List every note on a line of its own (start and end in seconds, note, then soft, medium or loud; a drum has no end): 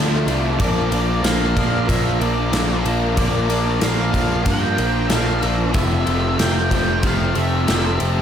0.00 0.25 D2 medium
0.00 0.58 D3 medium
0.00 0.30 F3 medium
0.00 0.29 A3 medium
0.00 0.27 D4 medium
0.27 0.57 C2 medium
0.27 0.61 A3 medium
0.27 0.62 D4 medium
0.27 ride medium
0.31 0.60 F3 medium
0.59 0.90 A#1 medium
0.59 1.23 A#2 medium
0.59 0.94 F3 medium
0.59 0.92 A#3 medium
0.59 0.91 D4 medium
0.59 1.26 D5 medium
0.59 kick loud
0.59 ride medium
0.91 1.22 A#1 medium
0.91 1.24 F3 medium
0.91 1.25 A#3 medium
0.91 1.26 D4 medium
0.91 ride medium
1.23 1.54 A#1 medium
1.23 1.87 A#2 medium
1.23 1.59 F3 medium
1.23 1.57 A#3 medium
1.23 1.56 D4 medium
1.23 1.89 F5 medium
1.23 snare loud
1.23 ride medium
1.56 1.87 A#1 medium
1.56 1.88 F3 medium
1.56 1.87 A#3 medium
1.56 1.89 D4 medium
1.56 kick medium
1.56 ride medium
1.87 2.19 A#1 medium
1.87 2.50 A#2 medium
1.87 2.21 F3 loud
1.87 2.19 A#3 loud
1.87 2.18 D4 loud
1.87 2.22 E5 medium
1.87 kick loud
1.87 ride medium
2.19 2.51 A#1 medium
2.19 2.52 F3 medium
2.19 2.51 A#3 medium
2.19 2.52 D4 medium
2.19 ride medium
2.23 2.83 D5 medium
2.51 2.83 A#1 medium
2.51 3.15 A#2 medium
2.51 2.87 F3 medium
2.51 2.84 A#3 medium
2.51 2.83 D4 medium
2.51 snare loud
2.51 ride loud
2.84 3.15 A#1 medium
2.84 3.16 F3 medium
2.84 3.17 A#3 medium
2.84 3.18 D4 medium
2.84 ride medium
3.16 3.78 A#1 medium
3.16 3.78 A#2 loud
3.16 3.50 F3 medium
3.16 3.48 A#3 medium
3.16 3.47 D4 medium
3.16 3.84 D5 medium
3.16 kick loud
3.16 ride medium
3.48 3.80 F3 medium
3.48 3.80 A#3 medium
3.48 3.81 D4 medium
3.48 ride medium
3.79 4.12 A#1 medium
3.79 4.42 A#2 medium
3.79 4.14 F3 medium
3.79 4.12 A#3 medium
3.79 4.10 D4 medium
3.79 4.45 F5 medium
3.79 snare loud
3.79 ride loud
4.11 4.44 A#1 medium
4.11 4.45 F3 medium
4.11 4.44 A#3 medium
4.11 4.46 D4 medium
4.11 kick medium
4.11 ride medium
4.43 4.76 G2 medium
4.43 5.08 A#2 medium
4.43 4.78 F3 loud
4.43 4.76 A#3 loud
4.43 4.74 D4 loud
4.43 5.08 G5 loud
4.43 kick loud
4.43 ride loud
4.75 5.09 A#1 medium
4.75 5.10 F3 medium
4.75 5.10 A#3 medium
4.75 5.11 D4 medium
4.75 ride medium
5.08 5.41 A#1 medium
5.08 5.72 A#2 medium
5.08 5.43 F3 medium
5.08 5.42 A#3 medium
5.08 5.42 F5 loud
5.08 snare loud
5.08 ride medium
5.12 5.40 D4 medium
5.41 5.73 A#1 medium
5.41 5.74 F3 medium
5.41 5.73 A#3 medium
5.41 5.72 D4 medium
5.41 5.54 E5 loud
5.41 ride medium
5.73 6.05 F1 loud
5.73 7.02 F2 medium
5.73 6.37 C3 medium
5.73 6.07 F3 medium
5.73 6.06 A3 loud
5.73 6.04 C4 medium
5.73 6.39 E5 medium
5.73 kick loud
5.73 ride medium
6.05 6.37 F1 medium
6.05 6.39 F3 medium
6.05 6.40 A3 medium
6.05 6.41 C4 medium
6.05 ride medium
6.38 6.69 F1 medium
6.38 7.02 C3 medium
6.38 6.72 F3 medium
6.38 6.71 A3 medium
6.38 6.70 C4 medium
6.38 7.05 G5 medium
6.38 snare loud
6.38 ride loud
6.70 7.01 F1 medium
6.70 7.03 F3 medium
6.70 7.04 A3 medium
6.70 7.04 C4 medium
6.70 kick medium
6.70 ride medium
7.03 7.33 F1 medium
7.03 7.67 F2 loud
7.03 7.65 C3 medium
7.03 7.36 F3 medium
7.03 7.34 A3 loud
7.03 7.32 C4 loud
7.03 7.38 F5 medium
7.03 kick loud
7.03 ride medium
7.34 7.66 F1 loud
7.34 7.67 F3 medium
7.34 7.67 A3 medium
7.34 7.68 C4 medium
7.34 ride medium
7.38 7.97 E5 medium
7.66 7.98 F1 loud
7.66 8.22 C3 medium
7.66 7.99 F3 medium
7.66 7.98 A3 medium
7.66 7.96 C4 medium
7.66 snare loud
7.66 ride medium
7.97 8.22 F1 medium
7.97 8.22 F3 medium
7.97 8.22 A3 medium
7.97 8.22 C4 medium
7.97 ride medium